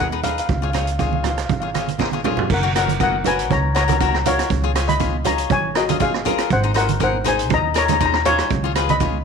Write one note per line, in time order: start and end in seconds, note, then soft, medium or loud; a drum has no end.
0.00 0.38 D#2 medium
0.00 0.07 A#4 medium
0.00 0.25 F#5 medium
0.12 0.19 D#4 medium
0.12 0.19 G#4 soft
0.12 0.19 B4 medium
0.23 0.46 D#4 medium
0.23 0.47 G#4 medium
0.23 0.47 B4 medium
0.23 0.30 F5 medium
0.23 closed hi-hat medium
0.23 low conga medium
0.32 0.38 F5 medium
0.38 0.45 F5 medium
0.38 closed hi-hat medium
0.46 1.49 C#2 loud
0.46 0.53 F5 medium
0.46 kick medium
0.46 closed hi-hat medium
0.46 low conga medium
0.54 0.62 F5 medium
0.62 0.69 F4 medium
0.62 0.69 G#4 soft
0.62 0.70 C#5 medium
0.62 0.69 F5 medium
0.70 0.89 F4 medium
0.70 0.76 F5 medium
0.74 0.89 G#4 medium
0.74 0.90 C#5 medium
0.74 0.83 F5 soft
0.74 cross-stick medium
0.74 closed hi-hat medium
0.74 low conga medium
0.84 0.90 F5 medium
0.84 closed hi-hat medium
0.92 0.98 F5 soft
0.99 1.38 F4 medium
0.99 1.38 G#4 medium
0.99 1.38 C#5 medium
0.99 1.05 F5 medium
0.99 kick medium
0.99 closed hi-hat medium
1.06 1.14 F5 soft
1.13 1.21 F5 soft
1.13 high conga medium
1.23 1.29 F5 soft
1.23 cross-stick medium
1.23 closed hi-hat medium
1.23 low conga medium
1.31 1.37 F5 medium
1.38 1.44 F5 medium
1.38 cross-stick medium
1.38 closed hi-hat medium
1.46 2.39 G#1 medium
1.46 1.52 F5 medium
1.46 kick loud
1.46 closed hi-hat medium
1.50 1.59 F5 medium
1.50 high conga medium
1.60 1.69 F4 medium
1.60 1.69 G#4 medium
1.60 1.70 C#5 medium
1.60 1.67 F5 medium
1.68 1.73 F5 soft
1.74 1.90 F4 medium
1.74 1.90 G#4 medium
1.74 1.90 C#5 medium
1.74 1.81 F5 medium
1.74 cross-stick medium
1.74 closed hi-hat medium
1.74 high conga medium
1.82 1.89 F5 medium
1.88 closed hi-hat medium
1.88 high conga medium
1.99 2.07 F4 medium
1.99 2.08 G#4 medium
1.99 2.08 A#4 medium
1.99 kick medium
1.99 snare medium
1.99 high conga medium
2.12 2.20 F4 medium
2.12 2.20 G#4 medium
2.12 2.20 C#5 medium
2.12 high conga medium
2.24 2.47 F4 medium
2.24 2.47 G#4 medium
2.24 2.47 C#5 medium
2.24 mid tom medium
2.24 low conga medium
2.37 floor tom medium
2.37 low conga medium
2.50 3.51 F#1 medium
2.50 2.74 A#4 medium
2.50 kick loud
2.50 crash loud
2.54 2.77 F#5 medium
2.63 2.70 F#4 medium
2.63 2.70 A#4 medium
2.63 2.70 C#5 medium
2.76 2.91 F#4 medium
2.76 2.98 A#4 medium
2.76 2.91 A#4 medium
2.76 2.91 C#5 medium
2.76 3.00 F#5 medium
2.76 cross-stick medium
2.76 closed hi-hat medium
2.88 closed hi-hat medium
2.88 high conga medium
3.00 3.16 F#4 medium
3.00 3.16 A#4 medium
3.00 3.24 A#4 medium
3.00 3.16 D#5 medium
3.00 3.27 F#5 medium
3.00 kick loud
3.00 closed hi-hat medium
3.24 3.56 F#4 medium
3.24 3.56 A#4 medium
3.24 3.49 B4 medium
3.24 3.56 C#5 medium
3.24 3.50 G#5 medium
3.24 closed hi-hat loud
3.24 low conga medium
3.39 closed hi-hat medium
3.51 4.40 C#2 medium
3.51 3.74 C#5 medium
3.51 3.76 A#5 loud
3.51 kick loud
3.51 closed hi-hat medium
3.51 high conga medium
3.75 3.83 F#4 medium
3.75 3.83 A#4 medium
3.75 3.83 C#5 medium
3.75 3.83 D#5 medium
3.75 3.83 A#5 loud
3.75 cross-stick medium
3.75 closed hi-hat medium
3.84 3.95 F#4 medium
3.84 3.91 A#5 medium
3.88 3.95 A#4 medium
3.88 3.96 C#5 medium
3.88 closed hi-hat medium
3.88 high conga medium
3.88 low conga medium
3.93 3.98 A#5 medium
3.99 4.16 F#4 medium
3.99 4.16 A#4 medium
3.99 4.16 C#5 medium
3.99 4.06 A#5 medium
3.99 kick medium
3.99 closed hi-hat medium
4.09 4.14 A#5 medium
4.14 4.21 A#5 medium
4.14 cross-stick medium
4.25 4.48 F#4 medium
4.25 4.49 A#4 medium
4.25 4.48 C#5 medium
4.25 4.86 C#5 loud
4.25 4.85 F5 medium
4.25 closed hi-hat medium
4.25 low conga medium
4.39 cross-stick medium
4.39 closed hi-hat medium
4.50 5.50 C#2 medium
4.50 kick loud
4.50 closed hi-hat medium
4.63 4.70 F4 medium
4.63 4.71 G#4 medium
4.63 4.71 C#5 medium
4.75 4.91 F4 medium
4.75 4.91 G#4 medium
4.75 4.91 C#5 medium
4.75 cross-stick medium
4.75 closed hi-hat medium
4.88 5.22 D#5 medium
4.88 5.26 B5 medium
4.88 closed hi-hat medium
4.88 high conga medium
5.00 5.16 F4 medium
5.00 5.16 G#4 medium
5.00 5.16 C#5 medium
5.00 kick medium
5.00 closed hi-hat medium
5.24 5.55 F4 medium
5.24 5.56 G#4 medium
5.24 5.49 C#5 medium
5.24 5.56 C#5 medium
5.24 5.52 A#5 medium
5.24 closed hi-hat medium
5.24 low conga medium
5.38 closed hi-hat medium
5.50 6.40 G#1 loud
5.50 5.74 C#5 medium
5.50 5.75 G#5 loud
5.50 kick loud
5.50 closed hi-hat medium
5.50 high conga medium
5.75 5.83 F4 medium
5.75 5.99 F#4 medium
5.75 5.83 G#4 medium
5.75 5.83 A#4 medium
5.75 6.02 D#5 medium
5.75 cross-stick medium
5.75 closed hi-hat medium
5.89 5.96 F4 medium
5.89 5.96 G#4 medium
5.89 5.96 D#5 medium
5.89 closed hi-hat medium
5.89 high conga medium
5.89 low conga medium
6.00 6.16 F4 medium
6.00 6.16 G#4 medium
6.00 6.37 G#4 medium
6.00 6.16 C#5 medium
6.00 6.37 F5 loud
6.00 kick loud
6.00 closed hi-hat medium
6.14 cross-stick medium
6.25 6.48 F4 medium
6.25 6.48 G#4 medium
6.25 6.48 A#4 medium
6.25 closed hi-hat medium
6.25 low conga medium
6.38 cross-stick medium
6.38 closed hi-hat medium
6.50 7.51 G#1 loud
6.50 6.75 C5 medium
6.50 6.75 F#5 loud
6.50 kick loud
6.50 closed hi-hat medium
6.63 6.71 D#4 medium
6.63 6.71 G#4 medium
6.63 6.71 C5 medium
6.74 6.91 D#4 medium
6.74 6.91 G#4 medium
6.74 7.00 A#4 medium
6.74 6.91 C5 medium
6.74 7.02 F#5 medium
6.74 cross-stick medium
6.74 closed hi-hat medium
6.89 closed hi-hat medium
6.89 high conga medium
7.00 7.16 D#4 medium
7.00 7.16 G#4 medium
7.00 7.17 A#4 medium
7.00 7.25 C5 medium
7.00 7.28 F#5 medium
7.00 kick loud
7.00 closed hi-hat medium
7.24 7.55 D#4 medium
7.24 7.56 G#4 medium
7.24 7.56 C5 medium
7.24 7.50 C5 medium
7.24 7.53 G#5 loud
7.24 closed hi-hat loud
7.24 low conga medium
7.39 closed hi-hat medium
7.50 8.40 D#2 loud
7.50 kick loud
7.50 closed hi-hat medium
7.50 high conga medium
7.54 7.76 D#5 medium
7.54 7.77 A#5 loud
7.74 7.83 D#4 medium
7.74 7.83 G#4 medium
7.74 7.83 A#4 medium
7.74 7.84 C#5 medium
7.74 7.84 A#5 loud
7.74 cross-stick medium
7.74 closed hi-hat medium
7.86 7.96 D#4 medium
7.86 7.96 G#4 medium
7.86 7.96 C5 loud
7.86 7.92 A#5 medium
7.86 closed hi-hat medium
7.86 high conga medium
7.86 low conga medium
7.93 7.99 A#5 medium
8.00 8.16 D#4 medium
8.00 8.16 G#4 medium
8.00 8.17 C5 medium
8.00 8.04 A#5 medium
8.00 kick medium
8.00 closed hi-hat medium
8.06 8.13 A#5 medium
8.14 8.21 A#5 medium
8.14 cross-stick medium
8.25 8.48 D#4 medium
8.25 8.48 G#4 medium
8.25 8.49 C5 medium
8.25 8.91 C#5 loud
8.25 8.85 F5 medium
8.25 closed hi-hat medium
8.25 low conga medium
8.39 cross-stick medium
8.39 closed hi-hat medium
8.50 9.24 C#2 loud
8.50 kick loud
8.50 closed hi-hat medium
8.64 8.71 F4 medium
8.64 8.72 G#4 medium
8.64 8.72 C#5 medium
8.75 8.92 F4 medium
8.75 8.92 G#4 medium
8.75 8.92 B4 medium
8.75 cross-stick medium
8.75 closed hi-hat medium
8.89 9.24 D#5 medium
8.89 9.24 B5 loud
8.89 closed hi-hat medium
8.89 high conga medium
9.00 9.17 F4 medium
9.00 9.17 G#4 medium
9.00 9.17 C#5 medium
9.00 kick loud
9.00 closed hi-hat medium